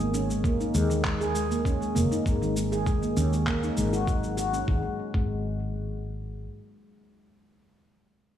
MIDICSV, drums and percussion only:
0, 0, Header, 1, 2, 480
1, 0, Start_track
1, 0, Tempo, 606061
1, 1787, Time_signature, 4, 2, 24, 8
1, 6635, End_track
2, 0, Start_track
2, 0, Title_t, "Drums"
2, 0, Note_on_c, 9, 69, 20
2, 78, Note_off_c, 9, 69, 0
2, 112, Note_on_c, 9, 69, 76
2, 192, Note_off_c, 9, 69, 0
2, 241, Note_on_c, 9, 69, 33
2, 320, Note_off_c, 9, 69, 0
2, 349, Note_on_c, 9, 36, 97
2, 353, Note_on_c, 9, 69, 43
2, 428, Note_off_c, 9, 36, 0
2, 432, Note_off_c, 9, 69, 0
2, 479, Note_on_c, 9, 69, 22
2, 558, Note_off_c, 9, 69, 0
2, 590, Note_on_c, 9, 69, 76
2, 669, Note_off_c, 9, 69, 0
2, 719, Note_on_c, 9, 69, 34
2, 798, Note_off_c, 9, 69, 0
2, 829, Note_on_c, 9, 36, 105
2, 829, Note_on_c, 9, 39, 74
2, 831, Note_on_c, 9, 69, 42
2, 908, Note_off_c, 9, 36, 0
2, 908, Note_off_c, 9, 39, 0
2, 910, Note_off_c, 9, 69, 0
2, 960, Note_on_c, 9, 69, 23
2, 1039, Note_off_c, 9, 69, 0
2, 1072, Note_on_c, 9, 69, 77
2, 1152, Note_off_c, 9, 69, 0
2, 1199, Note_on_c, 9, 69, 33
2, 1279, Note_off_c, 9, 69, 0
2, 1309, Note_on_c, 9, 36, 96
2, 1316, Note_on_c, 9, 69, 45
2, 1388, Note_off_c, 9, 36, 0
2, 1395, Note_off_c, 9, 69, 0
2, 1441, Note_on_c, 9, 69, 20
2, 1520, Note_off_c, 9, 69, 0
2, 1554, Note_on_c, 9, 69, 74
2, 1634, Note_off_c, 9, 69, 0
2, 1680, Note_on_c, 9, 69, 33
2, 1760, Note_off_c, 9, 69, 0
2, 1789, Note_on_c, 9, 36, 99
2, 1794, Note_on_c, 9, 69, 44
2, 1868, Note_off_c, 9, 36, 0
2, 1873, Note_off_c, 9, 69, 0
2, 1920, Note_on_c, 9, 69, 20
2, 1999, Note_off_c, 9, 69, 0
2, 2032, Note_on_c, 9, 69, 78
2, 2111, Note_off_c, 9, 69, 0
2, 2159, Note_on_c, 9, 69, 32
2, 2238, Note_off_c, 9, 69, 0
2, 2269, Note_on_c, 9, 36, 103
2, 2270, Note_on_c, 9, 69, 38
2, 2348, Note_off_c, 9, 36, 0
2, 2349, Note_off_c, 9, 69, 0
2, 2397, Note_on_c, 9, 69, 21
2, 2476, Note_off_c, 9, 69, 0
2, 2510, Note_on_c, 9, 69, 73
2, 2589, Note_off_c, 9, 69, 0
2, 2637, Note_on_c, 9, 69, 32
2, 2716, Note_off_c, 9, 69, 0
2, 2748, Note_on_c, 9, 39, 62
2, 2749, Note_on_c, 9, 36, 95
2, 2750, Note_on_c, 9, 69, 40
2, 2827, Note_off_c, 9, 39, 0
2, 2828, Note_off_c, 9, 36, 0
2, 2829, Note_off_c, 9, 69, 0
2, 2876, Note_on_c, 9, 69, 22
2, 2955, Note_off_c, 9, 69, 0
2, 2988, Note_on_c, 9, 69, 72
2, 3067, Note_off_c, 9, 69, 0
2, 3115, Note_on_c, 9, 69, 30
2, 3194, Note_off_c, 9, 69, 0
2, 3227, Note_on_c, 9, 36, 101
2, 3229, Note_on_c, 9, 69, 43
2, 3307, Note_off_c, 9, 36, 0
2, 3308, Note_off_c, 9, 69, 0
2, 3354, Note_on_c, 9, 69, 20
2, 3433, Note_off_c, 9, 69, 0
2, 3468, Note_on_c, 9, 69, 74
2, 3547, Note_off_c, 9, 69, 0
2, 3593, Note_on_c, 9, 69, 29
2, 3672, Note_off_c, 9, 69, 0
2, 3706, Note_on_c, 9, 36, 95
2, 3785, Note_off_c, 9, 36, 0
2, 4072, Note_on_c, 9, 36, 97
2, 4152, Note_off_c, 9, 36, 0
2, 6635, End_track
0, 0, End_of_file